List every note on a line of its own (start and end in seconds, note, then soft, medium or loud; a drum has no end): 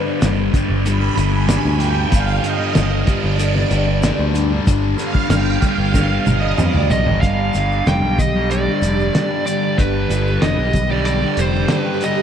0.00 0.19 G2 medium
0.00 7.30 G2 medium
0.00 7.30 D3 medium
0.05 0.20 D3 medium
0.05 0.21 G3 medium
0.20 0.48 G1 loud
0.20 0.52 G2 medium
0.20 0.53 D3 medium
0.20 0.55 G3 medium
0.20 snare loud
0.20 closed hi-hat medium
0.20 shaker loud
0.53 0.85 G2 medium
0.53 0.85 D3 medium
0.53 0.88 G3 medium
0.53 kick medium
0.53 closed hi-hat medium
0.53 shaker medium
0.70 1.09 G1 medium
0.85 1.16 G2 medium
0.85 1.02 D3 medium
0.85 1.00 G3 medium
0.85 1.35 B5 loud
0.85 closed hi-hat medium
0.85 shaker medium
1.00 1.15 D3 medium
1.00 1.17 G3 medium
1.16 1.57 G1 loud
1.16 1.47 G2 medium
1.16 1.33 D3 medium
1.16 1.31 G3 medium
1.16 closed hi-hat medium
1.16 shaker medium
1.32 1.47 D3 medium
1.32 1.49 G3 medium
1.32 1.82 G#5 loud
1.47 1.77 G2 loud
1.47 1.78 D3 loud
1.47 1.79 G3 loud
1.47 snare loud
1.47 closed hi-hat loud
1.47 shaker loud
1.65 2.04 D2 medium
1.77 2.09 G2 medium
1.77 1.95 D3 medium
1.77 1.94 G3 medium
1.77 2.09 G5 loud
1.77 closed hi-hat medium
1.82 shaker medium
1.94 2.10 D3 medium
1.94 2.12 G3 medium
2.09 2.39 G1 loud
2.09 2.41 G2 medium
2.09 2.42 D3 loud
2.09 2.44 G3 loud
2.09 2.44 F5 loud
2.09 kick loud
2.09 closed hi-hat loud
2.14 shaker loud
2.40 2.74 G2 medium
2.40 2.59 D3 medium
2.40 3.08 D#5 loud
2.44 2.57 G3 medium
2.44 closed hi-hat medium
2.44 shaker medium
2.57 2.75 D3 medium
2.57 2.77 G3 medium
2.74 3.03 G1 loud
2.74 3.05 G2 medium
2.74 3.06 D3 medium
2.74 3.08 G3 loud
2.74 snare loud
2.74 closed hi-hat medium
2.74 shaker medium
3.02 3.38 G2 medium
3.02 4.61 D5 loud
3.07 3.38 D3 medium
3.07 3.41 G3 medium
3.07 kick medium
3.07 closed hi-hat medium
3.07 shaker medium
3.24 3.63 G1 medium
3.38 3.69 G2 medium
3.38 3.56 D3 medium
3.38 3.54 G3 medium
3.38 closed hi-hat medium
3.38 shaker medium
3.54 3.70 D3 medium
3.54 3.73 G3 medium
3.54 snare soft
3.70 4.11 G1 loud
3.70 4.01 G2 medium
3.70 3.88 D3 medium
3.70 3.86 G3 medium
3.70 closed hi-hat medium
3.70 shaker medium
3.87 4.02 D3 medium
3.87 4.05 G3 medium
4.02 4.32 G2 medium
4.02 4.33 D3 medium
4.02 4.36 G3 loud
4.02 snare loud
4.02 closed hi-hat loud
4.02 shaker medium
4.19 4.59 D2 medium
4.32 4.64 G2 medium
4.32 4.52 D3 medium
4.32 4.49 G3 medium
4.32 closed hi-hat medium
4.32 shaker medium
4.50 4.66 D3 medium
4.50 4.67 G3 medium
4.66 4.93 G1 loud
4.66 4.96 G2 loud
4.66 4.97 D3 loud
4.66 4.98 G3 loud
4.66 kick loud
4.66 closed hi-hat loud
4.66 shaker medium
4.97 5.27 G2 medium
4.97 5.15 D3 medium
4.97 5.12 G3 medium
4.97 5.32 F5 medium
4.97 closed hi-hat medium
4.97 shaker medium
5.14 5.28 D3 medium
5.14 5.29 G3 medium
5.14 kick medium
5.28 5.57 G1 loud
5.28 5.60 G2 medium
5.28 5.61 D3 medium
5.28 5.62 G3 medium
5.28 5.63 G5 loud
5.28 snare loud
5.28 closed hi-hat loud
5.28 shaker medium
5.61 5.91 G2 medium
5.61 5.93 D3 medium
5.61 5.94 G3 medium
5.61 6.28 F5 loud
5.61 kick loud
5.61 closed hi-hat medium
5.61 shaker medium
5.78 6.18 G1 medium
5.93 6.24 G2 medium
5.93 6.10 D3 medium
5.93 6.08 G3 medium
5.93 kick medium
5.93 snare medium
5.93 shaker medium
6.09 6.25 D3 medium
6.09 6.27 G3 medium
6.25 6.53 G1 loud
6.25 6.57 G2 medium
6.25 6.43 D3 medium
6.25 6.40 G3 medium
6.25 6.60 D#5 medium
6.25 high tom medium
6.25 shaker medium
6.41 6.59 D3 medium
6.41 6.59 G3 medium
6.58 6.74 F2 loud
6.58 6.89 G2 loud
6.58 6.90 D3 loud
6.58 6.92 G3 loud
6.58 6.89 D5 medium
6.58 mid tom medium
6.58 shaker medium
6.74 6.89 D2 medium
6.74 mid tom medium
6.90 7.06 B1 medium
6.90 7.21 G2 medium
6.90 7.08 D3 medium
6.90 7.05 G3 medium
6.90 7.21 D#5 loud
6.90 floor tom medium
6.90 shaker medium
7.07 7.22 G1 medium
7.07 7.22 D3 medium
7.07 7.21 G3 medium
7.07 floor tom medium
7.20 7.49 G1 medium
7.20 7.54 G2 medium
7.20 12.22 D3 medium
7.20 7.55 D3 medium
7.20 12.22 G3 medium
7.20 12.22 G4 medium
7.20 7.88 F5 medium
7.20 12.22 B5 medium
7.20 kick loud
7.20 closed hi-hat medium
7.20 shaker medium
7.26 7.57 G3 loud
7.54 7.81 G1 medium
7.54 7.85 G2 medium
7.54 7.86 D3 medium
7.54 7.88 G3 medium
7.54 closed hi-hat medium
7.54 shaker medium
7.71 shaker soft
7.86 8.00 F1 medium
7.86 8.19 G2 medium
7.86 8.04 D3 medium
7.86 8.02 G3 medium
7.86 8.20 G5 medium
7.86 snare loud
7.86 closed hi-hat medium
7.86 shaker medium
8.02 8.68 B1 medium
8.02 8.18 D3 medium
8.02 8.19 G3 medium
8.19 8.51 D#5 medium
8.19 muted distorted electric guitar stroke soft
8.19 kick medium
8.19 closed hi-hat medium
8.19 shaker medium
8.35 8.67 D3 medium
8.35 8.65 G3 medium
8.51 9.45 D5 medium
8.51 closed hi-hat medium
8.51 shaker medium
8.65 8.83 D3 medium
8.65 8.85 G3 medium
8.82 9.09 F1 medium
8.82 9.13 G2 medium
8.82 9.02 D3 medium
8.82 8.99 G3 medium
8.82 closed hi-hat medium
8.82 shaker medium
8.99 9.16 G3 medium
8.99 shaker soft
9.03 9.14 D3 medium
9.13 9.45 G2 medium
9.13 9.30 D3 medium
9.13 9.29 G3 medium
9.13 snare loud
9.13 closed hi-hat medium
9.13 shaker medium
9.29 9.46 D3 medium
9.29 9.47 G3 medium
9.45 9.77 G2 medium
9.45 9.78 D3 medium
9.45 9.80 G3 medium
9.45 9.79 D5 medium
9.45 closed hi-hat medium
9.45 shaker loud
9.77 10.05 G1 medium
9.77 10.09 G2 medium
9.77 10.10 D3 medium
9.77 10.12 G3 loud
9.77 10.44 B4 medium
9.77 kick loud
9.77 closed hi-hat medium
9.77 shaker medium
10.10 10.36 G1 medium
10.10 10.41 G2 medium
10.10 10.42 D3 medium
10.10 10.44 G3 medium
10.10 closed hi-hat medium
10.10 shaker medium
10.27 shaker soft
10.42 10.55 F1 medium
10.42 10.73 G2 medium
10.42 10.60 D3 medium
10.42 10.58 G3 medium
10.42 10.91 D#5 medium
10.42 snare loud
10.42 closed hi-hat medium
10.42 shaker medium
10.58 11.23 B1 medium
10.58 10.73 D3 soft
10.58 10.74 G3 medium
10.73 muted distorted electric guitar stroke soft
10.73 kick medium
10.73 closed hi-hat medium
10.73 shaker medium
10.89 11.23 D3 medium
10.89 11.22 G3 medium
10.89 11.04 D5 medium
11.05 11.39 D5 medium
11.05 closed hi-hat medium
11.05 shaker medium
11.22 11.38 D3 medium
11.22 11.40 G3 medium
11.37 11.64 F1 medium
11.37 11.70 G2 medium
11.37 11.56 D3 medium
11.37 11.53 G3 medium
11.37 11.70 C5 medium
11.37 closed hi-hat medium
11.37 shaker medium
11.54 11.70 D3 medium
11.54 11.72 G3 medium
11.54 shaker soft
11.68 12.02 G2 medium
11.68 11.88 D3 medium
11.68 11.86 G3 medium
11.68 12.04 B4 medium
11.68 snare loud
11.68 closed hi-hat medium
11.68 shaker medium
11.86 12.03 D3 medium
11.86 12.04 G3 medium
12.01 12.22 G2 medium
12.01 12.22 D3 medium
12.01 12.22 D#5 medium
12.01 closed hi-hat medium
12.01 shaker medium
12.05 12.22 G3 medium